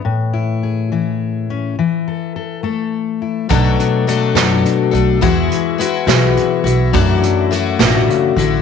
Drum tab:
HH |------|------|xxxxxx|xxxxxx|
SD |------|------|---o--|---o--|
BD |------|------|o-----|o-----|

HH |xxxxxx|
SD |---o--|
BD |o-----|